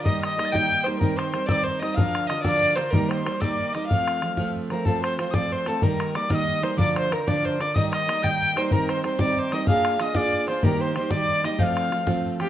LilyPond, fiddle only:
\new Staff \with { instrumentName = "Fiddle" } { \time 6/8 \key ees \lydian \tempo 4. = 125 ees''8 ees''4 g''4 c''8 | bes'8 c''8 c''8 d''8 c''8 ees''8 | f''4 ees''8 d''4 c''8 | bes'8 c''8 c''8 d''4 ees''8 |
f''2 r8 bes'8 | a'8 c''8 c''8 d''8 c''8 a'8 | bes'4 d''8 ees''4 c''8 | d''8 c''8 bes'8 d''8 c''8 d''8 |
ees''8 ees''4 g''4 c''8 | bes'8 c''8 c''8 d''16. d''32 c''8 ees''8 | f''4 ees''8 d''4 c''16. c''32 | bes'8 c''8 c''8 d''4 ees''8 |
f''2 r8 g'8 | }